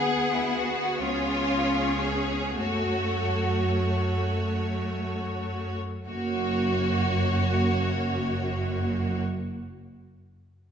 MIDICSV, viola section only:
0, 0, Header, 1, 2, 480
1, 0, Start_track
1, 0, Key_signature, 3, "minor"
1, 0, Tempo, 946372
1, 765, Tempo, 1071429
1, 1245, Time_signature, 6, 3, 24, 8
1, 1245, Tempo, 1119403
1, 1725, Tempo, 1153846
1, 2205, Tempo, 1209677
1, 2685, Tempo, 1145038
1, 4636, End_track
2, 0, Start_track
2, 0, Title_t, "Viola section"
2, 0, Program_c, 0, 48
2, 0, Note_on_c, 0, 59, 48
2, 0, Note_on_c, 0, 68, 52
2, 501, Note_off_c, 0, 68, 0
2, 502, Note_off_c, 0, 59, 0
2, 523, Note_on_c, 0, 59, 39
2, 523, Note_on_c, 0, 68, 43
2, 1235, Note_off_c, 0, 59, 0
2, 1235, Note_off_c, 0, 68, 0
2, 1250, Note_on_c, 0, 57, 41
2, 1251, Note_on_c, 0, 66, 36
2, 2565, Note_off_c, 0, 57, 0
2, 2565, Note_off_c, 0, 66, 0
2, 2690, Note_on_c, 0, 66, 39
2, 2691, Note_on_c, 0, 58, 44
2, 4001, Note_off_c, 0, 66, 0
2, 4002, Note_off_c, 0, 58, 0
2, 4636, End_track
0, 0, End_of_file